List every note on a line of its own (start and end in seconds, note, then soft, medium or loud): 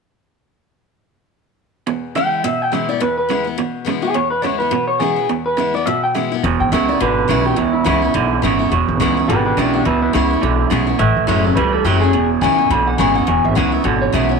1.87 2.13 E2 medium
1.87 2.42 E2 medium
1.87 2.13 B2 loud
2.15 2.42 E2 medium
2.15 2.42 C#3 loud
2.15 2.43 E3 medium
2.15 2.43 G#3 medium
2.15 2.43 B3 medium
2.15 2.44 E4 medium
2.15 2.43 G5 loud
2.44 2.70 E2 medium
2.44 2.99 B2 medium
2.44 2.70 B2 medium
2.44 2.62 E5 medium
2.62 2.73 G5 medium
2.72 2.99 E2 medium
2.72 2.99 C#3 medium
2.72 2.88 E3 medium
2.72 2.89 G#3 medium
2.72 2.89 B3 medium
2.72 2.88 E4 medium
2.72 2.89 E5 medium
2.89 3.02 B3 soft
2.89 3.00 E4 medium
2.89 3.01 D5 medium
3.00 3.55 E2 medium
3.00 3.27 E2 medium
3.00 3.28 B2 medium
3.00 3.16 B4 medium
3.18 3.45 B4 medium
3.29 3.56 E2 medium
3.29 3.56 C#3 medium
3.29 3.45 E3 medium
3.29 3.46 G#3 medium
3.29 3.46 B3 medium
3.29 3.43 E4 medium
3.45 3.58 B3 soft
3.45 3.57 E4 soft
3.58 3.85 E2 medium
3.58 4.13 B2 medium
3.58 3.85 B2 medium
3.85 4.13 E2 medium
3.85 4.13 C#3 medium
3.85 4.02 E3 medium
3.85 4.02 G#3 medium
3.85 4.03 B3 medium
3.85 4.01 E4 medium
4.02 4.15 B3 soft
4.02 4.14 E4 medium
4.02 4.15 G#4 loud
4.14 4.69 E2 medium
4.14 4.42 E2 medium
4.14 4.42 B2 medium
4.14 4.30 C#5 medium
4.31 4.42 B4 medium
4.42 4.70 E2 medium
4.42 4.70 C#3 medium
4.42 4.59 E3 medium
4.42 4.60 G#3 medium
4.42 4.60 B3 medium
4.42 4.59 E4 medium
4.42 4.58 C#5 medium
4.59 4.72 B3 soft
4.59 4.71 E4 soft
4.59 4.87 B4 medium
4.71 4.99 E2 medium
4.71 5.26 B2 medium
4.71 4.99 B2 loud
4.88 5.00 C#5 medium
5.00 5.27 E2 medium
5.00 5.27 C#3 medium
5.00 5.16 E3 medium
5.00 5.17 G#3 medium
5.00 5.17 B3 medium
5.00 5.15 E4 medium
5.00 5.28 G#4 loud
5.16 5.29 B3 soft
5.16 5.28 E4 medium
5.29 5.84 E2 medium
5.29 5.56 E2 medium
5.29 5.56 B2 loud
5.46 5.74 B4 medium
5.57 5.84 E2 medium
5.57 5.84 C#3 medium
5.57 5.73 E3 medium
5.57 5.74 G#3 medium
5.57 5.74 B3 medium
5.57 5.73 E4 medium
5.74 5.87 B3 soft
5.74 5.86 E4 soft
5.74 5.86 D5 medium
5.86 6.12 E2 medium
5.86 6.13 B2 medium
5.86 6.41 B2 medium
5.86 6.02 E5 medium
6.04 6.15 G5 medium
6.14 6.41 E2 medium
6.14 6.41 C#3 medium
6.14 6.31 E3 medium
6.14 6.31 G#3 medium
6.14 6.32 B3 medium
6.14 6.30 E4 medium
6.14 6.31 E5 medium
6.32 6.44 B3 soft
6.32 6.43 E4 medium
6.44 6.56 E1 medium
6.44 6.71 E2 medium
6.44 6.98 E2 medium
6.44 6.72 B2 medium
6.60 6.69 G#1 medium
6.60 6.72 G5 medium
6.72 6.94 C#2 loud
6.72 6.98 E2 medium
6.72 6.99 C#3 loud
6.72 6.88 E3 medium
6.72 6.88 G#3 loud
6.72 6.89 B3 medium
6.72 6.87 E4 medium
6.72 6.88 E5 medium
6.89 7.01 B3 medium
6.89 7.00 E4 medium
6.89 7.00 D5 medium
7.00 7.22 G#1 medium
7.00 7.27 E2 medium
7.00 7.55 B2 loud
7.00 7.29 D3 loud
7.00 7.45 B4 medium
7.28 7.51 B1 loud
7.28 7.55 E2 medium
7.28 7.55 C#3 loud
7.28 7.44 E3 medium
7.28 7.45 G#3 medium
7.28 7.45 B3 medium
7.28 7.44 E4 loud
7.45 7.58 B3 soft
7.45 7.57 E4 medium
7.45 7.57 G4 medium
7.56 7.79 C#2 medium
7.56 8.12 E2 medium
7.56 7.84 E2 medium
7.56 7.86 B2 medium
7.56 7.72 E4 medium
7.73 7.84 E4 medium
7.84 8.08 C#2 medium
7.84 8.12 E2 medium
7.84 8.12 C#3 medium
7.84 8.01 E3 medium
7.84 8.02 G#3 medium
7.84 8.02 B3 loud
7.84 8.69 E4 medium
7.84 8.00 E4 loud
8.02 8.15 B3 soft
8.02 8.14 E4 soft
8.14 8.36 B1 medium
8.14 8.43 E2 medium
8.14 8.69 B2 loud
8.14 8.44 D3 loud
8.42 8.65 G#1 medium
8.42 8.70 E2 medium
8.42 8.70 C#3 medium
8.42 8.59 E3 medium
8.42 8.59 G#3 medium
8.42 8.60 B3 medium
8.42 8.58 E4 medium
8.59 8.72 B3 soft
8.59 8.71 E4 medium
8.72 8.84 E1 loud
8.72 9.26 E2 medium
8.72 8.99 E2 medium
8.72 9.00 B2 loud
8.88 8.97 G#1 medium
9.00 9.22 C#2 medium
9.00 9.26 E2 medium
9.00 9.27 C#3 medium
9.00 9.16 E3 medium
9.00 9.16 G#3 loud
9.00 9.17 B3 loud
9.00 9.16 E4 loud
9.17 9.29 B3 soft
9.17 9.28 E4 medium
9.28 9.50 G#1 medium
9.28 9.56 E2 medium
9.28 9.84 B2 medium
9.28 9.57 D3 medium
9.28 9.44 G4 medium
9.28 9.45 B4 medium
9.45 9.56 G4 medium
9.45 9.57 B4 medium
9.57 9.79 B1 medium
9.57 9.83 E2 medium
9.57 9.84 C#3 medium
9.57 9.73 E3 medium
9.57 9.74 G#3 medium
9.57 9.74 B3 medium
9.57 9.73 D4 medium
9.57 9.72 E4 medium
9.57 9.74 G4 medium
9.74 9.86 B3 soft
9.74 9.85 D4 medium
9.74 9.85 E4 medium
9.74 9.85 G4 medium
9.85 10.07 C#2 loud
9.85 10.12 E2 medium
9.85 10.40 E2 medium
9.85 10.14 B2 medium
9.85 10.01 B3 medium
9.85 10.01 E4 loud
10.02 10.13 B3 medium
10.02 10.13 E4 medium
10.13 10.36 C#2 loud
10.13 10.40 E2 medium
10.13 10.40 C#3 medium
10.13 10.30 E3 loud
10.13 10.30 G#3 medium
10.13 10.31 B3 medium
10.13 10.69 E4 medium
10.13 10.29 E4 loud
10.31 10.43 B3 soft
10.31 10.42 E4 medium
10.41 10.64 B1 medium
10.41 10.69 E2 medium
10.41 10.98 B2 medium
10.41 10.71 D3 loud
10.70 10.93 B1 loud
10.70 10.97 E2 medium
10.70 10.97 C#3 medium
10.70 10.87 E3 medium
10.70 10.87 G#3 medium
10.70 10.88 B3 medium
10.70 10.86 E4 medium
10.87 11.00 B3 soft
10.87 10.99 E4 medium
10.99 11.12 A1 medium
10.99 11.26 A2 medium
10.99 11.54 A2 medium
10.99 11.27 E3 medium
10.99 11.55 E5 loud
11.17 11.25 C#2 medium
11.27 11.50 F#1 loud
11.27 11.54 A2 medium
11.27 11.44 E3 loud
11.27 11.54 F#3 medium
11.27 11.44 A3 medium
11.27 11.45 C#4 loud
11.27 11.43 E4 medium
11.44 11.57 C#4 soft
11.44 11.56 E4 medium
11.56 11.78 C#2 medium
11.56 12.12 E2 loud
11.56 11.84 A2 medium
11.56 11.85 G3 loud
11.56 11.72 B4 medium
11.73 11.85 A4 medium
11.85 12.13 F#1 loud
11.85 12.12 A2 medium
11.85 12.01 E3 medium
11.85 12.12 F#3 medium
11.85 12.02 A3 medium
11.85 12.02 C#4 medium
11.85 12.00 E4 loud
11.85 12.00 G4 medium
12.01 12.14 C#4 medium
12.01 12.13 E4 medium
12.01 12.29 G#4 loud
12.13 12.35 E1 loud
12.13 12.41 E2 medium
12.13 12.68 E2 medium
12.13 12.42 B2 loud
12.41 12.63 C#2 loud
12.41 12.68 E2 medium
12.41 12.69 C#3 loud
12.41 12.58 E3 medium
12.41 12.59 G#3 medium
12.41 12.59 B3 loud
12.41 12.57 E4 loud
12.41 12.70 G#5 medium
12.58 12.71 B3 medium
12.58 12.70 E4 medium
12.70 12.92 B1 medium
12.70 12.98 E2 loud
12.70 13.26 B2 medium
12.70 12.99 D3 loud
12.70 12.87 B5 medium
12.87 12.99 F#5 medium
12.98 13.21 G#1 loud
12.98 13.25 E2 medium
12.98 13.26 C#3 loud
12.98 13.15 E3 loud
12.98 13.15 G#3 medium
12.98 13.16 B3 medium
12.98 13.14 E4 loud
12.98 13.15 G#5 medium
13.15 13.28 B3 soft
13.15 13.27 E4 medium
13.15 13.27 F#5 loud
13.27 13.40 E1 medium
13.27 13.82 E2 medium
13.27 13.56 E2 medium
13.27 13.57 B2 loud
13.27 13.44 G#5 medium
13.44 13.53 G#1 medium
13.44 13.56 E5 medium
13.55 13.78 C#2 medium
13.55 13.83 E2 medium
13.55 13.83 C#3 loud
13.55 13.72 E3 medium
13.55 13.72 G#3 medium
13.55 13.73 B3 loud
13.55 13.71 E4 medium
13.55 13.73 F#5 medium
13.72 13.85 B3 soft
13.72 13.84 E4 medium
13.72 13.85 E5 medium
13.84 14.06 G#1 medium
13.84 14.12 E2 loud
13.84 14.39 B2 medium
13.84 14.13 D3 loud
13.84 14.01 F#5 medium
14.02 14.13 C#5 medium
14.12 14.35 B1 loud
14.12 14.40 E2 medium
14.12 14.40 C#3 medium
14.12 14.29 E3 medium
14.12 14.30 G#3 medium
14.12 14.30 B3 medium
14.12 14.28 E4 loud
14.12 14.31 E5 medium
14.29 14.40 B3 medium
14.29 14.40 E4 medium
14.29 14.40 C#5 medium